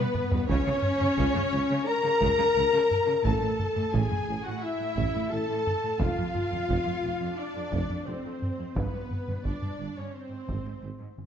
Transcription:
Already playing: french horn section B3, viola section B3, trumpet section B4, violin section B4, flute B4
0.14 taiko low-mid
0.32 cello section G2, taiko low
0.48 tuba C#2, double bass section C#2, cello section C#3, french horn section C#4, viola section C#4, trumpet section C#5, violin section C#5, flute C#5, taiko
0.66 cello section C#3
0.83 taiko low-mid
1.00 cello section C#3, taiko low-mid
1.17 tuba C#2, double bass section C#2, cello section C#3, taiko
1.35 cello section C#3, taiko low-mid
1.52 tuba C#2, double bass section C#2, cello section C#3
1.70 cello section C#3
1.87 french horn section A#4, viola section A#4, violin section A#5, trumpet section A#5, flute A#5
2.04 cello section C#3
2.21 tuba C#2, double bass section C#2, cello section C#3, taiko
2.38 cello section C#3
2.56 tuba C#2, double bass section C#2, cello section C#3
2.72 cello section C#3
2.91 taiko low-mid
3.07 cello section C#3
3.24 tuba A1, double bass section A1, cello section A2, viola section A4, french horn section A4, trumpet section A5, violin section A5, flute A5, taiko
3.41 cello section A2
3.59 taiko low-mid
3.76 cello section A2, taiko low-mid
3.93 tuba A1, double bass section A1, cello section A2, viola section G#4, french horn section G#4, trumpet section G#5, violin section G#5, flute G#5, taiko
4.10 cello section A2, taiko low-mid
4.28 tuba A1, double bass section A1, cello section A2
4.45 cello section A2, viola section F#4, french horn section F#4, trumpet section F#5, flute F#5, violin section F#5
4.62 viola section E4, french horn section E4, trumpet section E5, violin section E5, flute E5
4.80 cello section A2
4.97 tuba A1, double bass section A1, cello section A2, taiko
5.15 cello section A2
5.31 tuba A1, double bass section A1, cello section A2, viola section A4, french horn section A4, trumpet section A5, violin section A5, flute A5
5.48 cello section A2
5.67 taiko low-mid
5.83 cello section A2
5.99 tuba F1, double bass section F1, cello section F2, viola section F4, french horn section F4, violin section F5, trumpet section F5, flute F5, taiko
6.17 cello section F2
6.35 taiko low-mid
6.52 cello section F2, taiko low-mid
6.69 double bass section F1, tuba F1, cello section F2, taiko
6.86 cello section F2, taiko low-mid
7.03 double bass section F1, tuba F1, cello section F2
7.20 cello section F2
7.37 french horn section D4, viola section D4, trumpet section D5, violin section D5, flute D5
7.55 cello section F2
7.72 tuba F1, double bass section F1, cello section F2, taiko
7.89 cello section F2
8.06 double bass section F1, tuba F1, cello section F2, viola section C4, french horn section C4, trumpet section C5, flute C5, violin section C5
8.24 cello section F2
8.42 taiko low-mid
8.58 cello section F2
8.76 tuba G1, double bass section G1, cello section G2, french horn section B3, viola section B3, trumpet section B4, violin section B4, flute B4, taiko
8.94 cello section G2
9.11 taiko low-mid
9.28 cello section G2, taiko low-mid
9.45 double bass section G1, tuba G1, cello section G2, viola section D4, french horn section D4, flute D5, trumpet section D5, violin section D5, taiko
9.62 cello section G2, taiko low-mid
9.79 double bass section G1, tuba G1, cello section G2
9.96 cello section G2, viola section C#4, french horn section C#4, trumpet section C#5, flute C#5, violin section C#5
10.14 french horn section C4, viola section C4, trumpet section C5, violin section C5, flute C5
10.30 cello section G#2
10.48 double bass section G#1, tuba G#1, cello section G#2, taiko
10.65 cello section G#2
10.82 tuba G#1, double bass section G#1, cello section G#2
10.99 cello section G#2
11.18 taiko low-mid

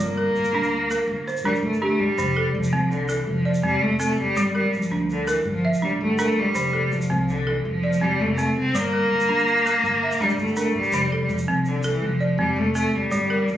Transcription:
Already playing: balafon F4
0.00 upright bass G1, balafon G3, cello A#3
0.18 balafon A#4
0.35 upright bass G1, shaker
0.45 shaker
0.53 upright bass D2, balafon D4
0.63 shaker
0.91 balafon A#4, shaker
1.07 upright bass G1
1.28 balafon C5, shaker
1.37 shaker
1.44 upright bass G1, cello G3, balafon D4 A#4
1.55 shaker
1.63 upright bass G1, cello A3
1.73 shaker
1.82 cello A3, balafon D4 G4
2.00 upright bass G1, cello G3
2.18 upright bass F1, balafon F3, shaker
2.36 balafon A4
2.55 upright bass F1, cello F3
2.64 shaker
2.73 upright bass C2, balafon C4
2.91 cello D3, shaker
3.09 cello E3, balafon A4, shaker
3.27 upright bass F1, cello F3
3.45 balafon D5
3.54 shaker
3.63 upright bass F1, cello G3, balafon C4
3.81 upright bass F1, cello A3
4.00 cello A3, balafon C4 A4, shaker
4.18 upright bass F1, cello G3
4.36 upright bass G1, balafon G3, shaker
4.55 cello G3, balafon A#4
4.67 cello G3
4.73 upright bass G1, cello F3, shaker
4.82 shaker
4.91 upright bass D2, balafon D4
5.10 cello D3, shaker
5.27 cello E3, balafon A#4, shaker
5.45 upright bass G1, cello F3
5.65 balafon E5
5.74 shaker
5.82 upright bass G1, cello G3, balafon D4
6.01 upright bass G1, cello A3
6.19 cello A3, balafon D4 A#4, shaker
6.37 upright bass G1, cello G3
6.55 upright bass F1, balafon F3, shaker
6.73 balafon A4
6.91 upright bass F1, cello F3, shaker
7.02 shaker
7.10 upright bass C2, balafon C4
7.29 cello D3, shaker
7.47 cello E3, balafon A4
7.65 upright bass F1, cello F3
7.83 balafon D5
7.93 shaker
8.01 upright bass F1, cello G3, balafon C4
8.20 upright bass F1, cello A3
8.33 cello A#3
8.38 cello A3, balafon C4, shaker
8.56 upright bass F1, cello C4
8.74 upright bass G1, balafon G3, cello A#3, shaker
8.93 balafon A#4
9.11 upright bass G1
9.20 shaker
9.29 upright bass D2, balafon D4
9.39 shaker
9.48 shaker
9.57 shaker
9.66 balafon A#4, shaker
9.83 upright bass G1, shaker
10.03 balafon E5
10.11 shaker
10.20 upright bass G1, cello G3, balafon D4, shaker
10.29 shaker
10.38 upright bass G1, cello A3, shaker
10.48 shaker
10.57 cello A3, balafon D4 A#4, shaker
10.75 upright bass G1, cello G3
10.84 shaker
10.92 upright bass F1, balafon F3, shaker
11.12 balafon A4
11.23 cello G3
11.29 upright bass F1, cello F3, shaker
11.38 shaker
11.47 upright bass C2, balafon C4
11.65 cello D3, shaker
11.80 cello F3, balafon A4, shaker
11.88 cello E3
12.02 upright bass F1
12.06 cello F3
12.20 balafon D5
12.38 upright bass F1, cello G3, balafon C4
12.56 upright bass F1, cello A3
12.75 cello A3, balafon C4 A4, shaker
12.87 cello A3
12.93 upright bass F1, cello G3
13.11 upright bass G1, balafon G3, shaker
13.30 balafon A#4
13.48 upright bass G1, cello F3, shaker

